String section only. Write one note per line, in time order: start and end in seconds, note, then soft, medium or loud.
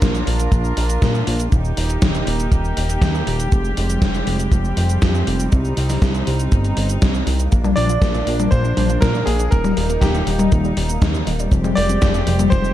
0.00 1.50 D4 medium
0.00 1.50 F4 medium
0.00 1.50 A#4 medium
1.52 3.50 A#3 medium
1.52 3.50 D#4 medium
1.52 5.48 G4 medium
3.52 5.50 F3 medium
3.52 7.48 G3 medium
3.52 5.50 G#3 medium
3.52 7.48 C4 medium
5.52 7.50 D#4 medium
7.52 9.50 F3 medium
7.52 11.48 A#3 medium
7.52 9.50 D4 medium
9.52 12.73 G3 medium
9.52 11.50 D#4 medium
11.52 12.73 F3 medium
11.52 12.73 G#3 medium
11.52 12.73 C4 medium
11.52 12.73 G4 medium